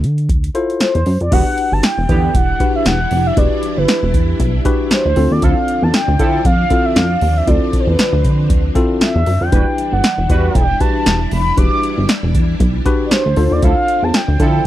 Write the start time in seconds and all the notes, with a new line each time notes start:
0.04 D3, closed hi-hat
0.18 closed hi-hat
0.29 D2, kick, closed hi-hat
0.44 closed hi-hat
0.55 E4 F4 A4 C5, closed hi-hat
0.70 closed hi-hat
0.80 C5, snare, closed hi-hat
0.95 E2, closed hi-hat
1.06 F#2, open hi-hat
1.21 F2 D5, closed hi-hat
1.31 E1 D3 E3 G3 B3 D4 E4 F#4 G4 B4 F#5, kick, closed hi-hat, crash
1.58 closed hi-hat
1.72 G1 A5
1.83 G5, snare, closed hi-hat
1.98 E1
2.09 E2 D3 B3 G4, kick, closed hi-hat
2.34 E1 F#5, kick, closed hi-hat
2.60 D4 F#4 G4 B4, kick, closed hi-hat
2.75 E5
2.86 E1 F#5, snare, closed hi-hat
3.11 F1, open hi-hat
3.27 E5
3.37 E1 D4 F#4 G4 B4 D5, kick, closed hi-hat
3.63 closed hi-hat
3.77 G1 B4
3.88 snare, closed hi-hat
4.03 E1
4.14 E2, kick, closed hi-hat
4.39 B1, kick, closed hi-hat
4.65 D4 F#4 G4 B4, kick, closed hi-hat
4.91 C5, snare, closed hi-hat
5.05 D2
5.16 D2 D3 F3 C4 D4 F4 A4, open hi-hat
5.31 D#2 D5
5.42 D2 F3 E4 A4 F5, kick, closed hi-hat
5.68 closed hi-hat
5.82 E2 A5
5.94 G5, snare, closed hi-hat
6.08 D2
6.19 D3 F3 E4 A4, kick, closed hi-hat
6.45 F2 F5, kick, closed hi-hat
6.70 C4 E4 F4 A4, kick, closed hi-hat
6.86 E5
6.96 F2 F5, snare, closed hi-hat
7.21 D#2, open hi-hat
7.37 E5
7.47 D2 C4 E4 F4 A4 D5, kick, closed hi-hat
7.73 kick, closed hi-hat
7.80 C5
7.87 E2 B4
7.99 snare, closed hi-hat
8.13 D2
8.24 D3, kick, closed hi-hat
8.50 D2, kick, closed hi-hat
8.75 C4 E4 F4 A4, kick, closed hi-hat
9.01 E5, snare, closed hi-hat
9.16 E2
9.26 F#2, open hi-hat
9.41 F2 G5
9.52 E1 E3 G3 D4 E4 F#4 G4 B4, kick, closed hi-hat
9.78 closed hi-hat
9.92 G1 F#5
10.04 snare, closed hi-hat
10.18 E1
10.29 E2 G3 F#4 B4, kick, closed hi-hat
10.55 E1 G5, kick, closed hi-hat
10.80 D4 F#4 G4 B4 A5, kick, closed hi-hat
11.06 E1, snare, closed hi-hat
11.31 F1 B5, open hi-hat
11.57 E1 D4 F#4 G4 B4 D6, kick, closed hi-hat
11.83 closed hi-hat
11.98 G1
12.09 snare, closed hi-hat
12.23 E1
12.35 E2, kick, closed hi-hat
12.60 B1, kick, closed hi-hat
12.85 D4 F#4 G4 B4, kick, closed hi-hat
13.06 D5
13.11 C5, snare, closed hi-hat
13.26 D2
13.36 D2 D3 F3 C4 D4 F4 A4 C5, open hi-hat
13.51 D#2 D5
13.62 D2 F3 E4 A4 F5, kick, closed hi-hat
13.88 closed hi-hat
14.03 E2 A5
14.14 G5, snare, closed hi-hat
14.28 D2
14.40 D3 F3 E4 A4, kick, closed hi-hat